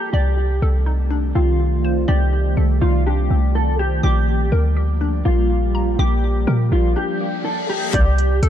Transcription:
Already playing: synth pluck A#3 D4 G4 A#4 A#5, clean electric guitar G4
0.13 808-style bass C2, ambient pad D#3 A3 C4 G4 D5, clean electric guitar G4, synth pluck D5
0.62 808-style bass C2, synth pluck A4
0.86 synth pluck D#4
1.11 synth pluck D4
1.35 808-style bass C2, synth pluck C4, clean electric guitar F4
1.85 synth pluck C5
2.08 808-style bass C2, ambient pad F4, clean electric guitar G4, synth pluck D5
2.57 808-style bass C2, synth pluck A4
2.81 808-style bass C2, synth pluck D#4, clean electric guitar F4
3.06 synth pluck D4, clean electric guitar G4
3.30 808-style bass C2, synth pluck C4
3.55 clean electric guitar A4
3.79 clean electric guitar G4, synth pluck C5
4.03 808-style bass A#1, ambient pad F3 G3 A#3 G4, clean electric guitar G4, synth pluck D6
4.52 808-style bass D2, synth pluck A#4
4.77 synth pluck G4
5.01 synth pluck D4
5.25 808-style bass A#1, synth pluck A#3, clean electric guitar F4
5.75 synth pluck A#5
5.99 808-style bass A#1, clean electric guitar G4, synth pluck D6
6.47 808-style bass A#2, synth pluck A#4
6.72 808-style bass A#1, clean electric guitar F4, synth pluck G4
6.96 synth pluck D4, clean electric guitar G4, reverse cymbal
7.21 synth pluck A#3
7.45 clean electric guitar A4
7.69 clean electric guitar G4, synth pluck A#5
7.93 808-style bass C2, ambient pad D#3 A3 C4 G4 D5, clean electric guitar G4, synth pluck D5, kick, closed hi-hat
8.18 closed hi-hat
8.43 808-style bass C2, synth pluck A4, closed hi-hat

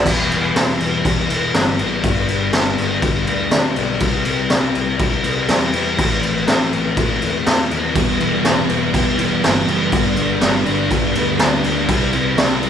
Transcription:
0.05 picked electric bass E1, distorted electric guitar E3 G3 B3 E4, kick, crash
0.30 picked electric bass E1, distorted electric guitar G3 B3 E4, crash
0.54 picked electric bass E1, distorted electric guitar E3 G3 B3 E4, snare, crash
0.80 picked electric bass E1, crash
1.04 picked electric bass E1, distorted electric guitar E3 G3 B3 E4, kick, crash
1.29 picked electric bass E1, distorted electric guitar G3 B3 E4, crash
1.54 picked electric bass G1, distorted electric guitar E3 G3 B3 E4, snare, crash
1.79 picked electric bass A1, distorted electric guitar G3 B3 E4, crash
2.04 picked electric bass G1, distorted electric guitar G2 D3 G3 B3 D4, kick, crash
2.28 picked electric bass G1, distorted electric guitar G3 B3 D4, crash
2.53 picked electric bass G1, distorted electric guitar D3 G3 B3 D4, snare, crash
2.78 picked electric bass G1, crash
3.02 picked electric bass G1, distorted electric guitar G2 D3 G3 B3 D4, kick, crash
3.27 picked electric bass D2, distorted electric guitar G3 B3 D4, crash
3.51 picked electric bass D2, distorted electric guitar D3 G3 B3 D4, snare, crash
3.76 picked electric bass B1, distorted electric guitar G3 B3 D4, crash
4.00 picked electric bass C2, distorted electric guitar C3 G3 C4 E4, kick, crash
4.25 picked electric bass C2, distorted electric guitar G3 C4 E4, crash
4.50 picked electric bass C2, distorted electric guitar C3 G3 C4 E4, snare, crash
4.75 picked electric bass C2, crash
4.99 picked electric bass C2, distorted electric guitar C3 G3 C4 E4, kick, crash
5.24 picked electric bass C2, distorted electric guitar G3 C4 E4, crash
5.49 picked electric bass E2, distorted electric guitar C3 G3 C4 E4, snare, crash
5.73 picked electric bass E2, distorted electric guitar G3 C4 E4, crash
5.98 picked electric bass A1, distorted electric guitar A2 E3 A3 C4 E4, kick, crash
6.23 picked electric bass A1, distorted electric guitar A3 C4 E4, crash
6.47 picked electric bass A1, distorted electric guitar E3 A3 C4 E4, snare, crash
6.73 picked electric bass A1, crash
6.97 picked electric bass A1, distorted electric guitar A2 E3 A3 C4 E4, kick, crash
7.21 picked electric bass E2, distorted electric guitar A3 C4 E4, crash
7.46 picked electric bass E2, distorted electric guitar E3 A3 C4 E4, snare, crash
7.70 picked electric bass D#2, distorted electric guitar A3 C4 E4, crash
7.95 picked electric bass E1, distorted electric guitar E3 G3 B3 E4, kick, crash
8.19 picked electric bass E1, distorted electric guitar G3 B3 E4, crash
8.45 picked electric bass E1, distorted electric guitar E3 G3 B3 E4, snare, crash
8.68 picked electric bass E1, distorted electric guitar G3 B3 E4, crash
8.94 picked electric bass E1, distorted electric guitar E3 G3 B3 E4, kick, crash
9.18 picked electric bass E1, distorted electric guitar G3 B3 E4, crash
9.42 picked electric bass G1, distorted electric guitar E3 G3 B3 E4, snare, crash
9.66 picked electric bass F#1, distorted electric guitar G3 B3 E4, crash
9.92 picked electric bass G1, distorted electric guitar G2 D3 G3 B3 D4, kick, crash
10.16 picked electric bass G1, distorted electric guitar G3 B3 D4, crash
10.41 picked electric bass G1, distorted electric guitar G2 D3 G3 B3 D4, snare, crash
10.66 picked electric bass G1, distorted electric guitar G3 B3 D4, crash
10.91 picked electric bass G1, distorted electric guitar G2 D3 G3 B3 D4, kick, crash
11.15 picked electric bass D2, distorted electric guitar G3 B3 D4, crash
11.39 picked electric bass D2, distorted electric guitar D3 G3 B3 D4, snare, crash
11.64 picked electric bass D2, distorted electric guitar G3 B3 D4, crash
11.89 picked electric bass C2, distorted electric guitar C3 G3 C4 E4, kick, crash
12.12 picked electric bass C2, distorted electric guitar G3 C4 E4, crash
12.37 picked electric bass C2, distorted electric guitar C3 G3 C4 E4, snare, crash
12.62 picked electric bass C2, distorted electric guitar G3 C4 E4, crash

